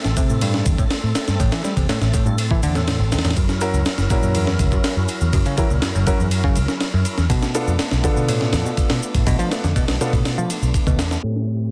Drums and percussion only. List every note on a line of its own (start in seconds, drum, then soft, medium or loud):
0.04 snare medium
0.04 shaker soft
0.17 kick loud
0.17 ride medium
0.17 shaker medium
0.30 shaker soft
0.41 ride medium
0.41 shaker soft
0.54 snare medium
0.66 kick medium
0.66 ride medium
0.66 shaker medium
0.78 kick medium
0.78 shaker soft
0.91 snare loud
0.91 ride medium
0.91 shaker soft
1.15 snare loud
1.15 ride medium
1.15 shaker medium
1.28 snare medium
1.28 shaker soft
1.40 kick medium
1.40 ride medium
1.40 shaker soft
1.52 snare loud
1.52 ride medium
1.52 shaker soft
1.64 snare soft
1.64 shaker medium
1.77 kick medium
1.77 ride medium
1.77 shaker soft
1.89 snare loud
1.89 ride medium
1.89 shaker soft
2.02 snare medium
2.02 shaker soft
2.14 kick medium
2.14 ride medium
2.14 shaker medium
2.26 shaker soft
2.38 ride medium
2.38 shaker soft
2.51 kick medium
2.63 ride medium
2.63 shaker medium
2.75 snare soft
2.75 shaker soft
2.88 snare loud
2.88 ride medium
2.88 shaker soft
3.12 snare medium
3.12 ride medium
3.12 shaker medium
3.19 snare medium
3.19 ride medium
3.24 snare medium
3.24 ride medium
3.24 shaker soft
3.31 snare medium
3.31 ride medium
3.36 kick loud
3.36 ride medium
3.36 shaker soft
3.49 snare medium
3.49 shaker soft
3.61 ride medium
3.61 shaker medium
3.74 shaker soft
3.86 snare loud
3.86 ride medium
3.86 shaker soft
3.98 snare medium
3.98 shaker soft
4.10 kick medium
4.10 ride medium
4.10 shaker medium
4.23 shaker soft
4.35 ride medium
4.35 shaker soft
4.47 snare medium
4.59 kick loud
4.59 ride medium
4.59 shaker medium
4.72 kick medium
4.72 shaker soft
4.84 snare loud
4.84 ride medium
4.84 shaker soft
5.08 ride medium
5.08 shaker medium
5.21 shaker soft
5.33 kick loud
5.33 ride medium
5.33 shaker soft
5.45 ride soft
5.45 shaker soft
5.58 kick medium
5.58 ride medium
5.58 shaker medium
5.70 shaker soft
5.82 snare loud
5.82 ride medium
5.82 shaker soft
5.95 shaker soft
6.07 kick loud
6.07 ride medium
6.07 shaker medium
6.20 shaker soft
6.31 ride medium
6.31 shaker soft
6.44 kick medium
6.56 ride medium
6.56 shaker medium
6.68 snare soft
6.68 shaker soft
6.81 snare loud
6.81 ride medium
6.81 shaker soft
7.05 ride medium
7.05 shaker medium
7.18 snare soft
7.18 shaker soft
7.30 kick loud
7.30 ride medium
7.30 shaker soft
7.42 snare medium
7.42 shaker soft
7.55 ride medium
7.55 shaker medium
7.68 shaker soft
7.79 snare loud
7.79 ride medium
7.79 shaker soft
7.91 snare medium
7.91 shaker soft
8.04 kick loud
8.04 ride medium
8.04 shaker medium
8.17 shaker soft
8.29 ride medium
8.29 shaker soft
8.41 snare medium
8.53 snare loud
8.53 ride medium
8.53 shaker medium
8.66 shaker soft
8.77 kick medium
8.77 ride medium
8.77 shaker soft
8.90 snare loud
8.90 ride medium
9.03 shaker medium
9.14 kick medium
9.14 ride medium
9.14 shaker soft
9.27 kick loud
9.27 ride medium
9.27 shaker soft
9.39 ride soft
9.39 shaker soft
9.51 snare loud
9.51 ride medium
9.51 shaker medium
9.64 snare soft
9.64 shaker soft
9.76 kick medium
9.76 ride medium
9.76 shaker soft
9.88 snare loud
9.88 ride medium
9.88 shaker soft
10.01 snare medium
10.01 shaker medium
10.13 kick medium
10.13 ride medium
10.13 shaker soft
10.25 snare loud
10.25 ride medium
10.25 shaker soft
10.38 shaker soft
10.50 ride medium
10.50 shaker medium
10.63 shaker soft
10.74 kick medium
10.74 ride medium
10.74 shaker soft
10.87 kick medium
10.87 shaker soft
10.99 snare loud
10.99 ride medium
10.99 shaker medium
11.11 snare medium
11.11 shaker soft
11.23 ride medium
11.36 snare soft
11.48 ride medium